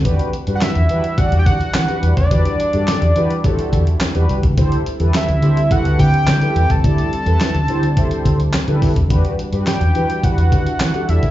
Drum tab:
HH |xxxxxxxxxxxxxxxx|xxxxxxxxxxxxxxxx|xxxxxxxxxxxxxxxx|xxxxxxxxxxxxxxox|
CP |----x-------x---|----x-------x---|----x-------x---|----x-------x---|
SD |----o-------o---|----o-------o---|----o-------o---|----o-------o---|
BD |o-------o-o----o|o-------o-o----o|o-------o-o----o|o-------o-o---oo|

HH |xxxxxxxxxxxxxxxx|
CP |----x-------x---|
SD |----o-------o---|
BD |o-------o-o----o|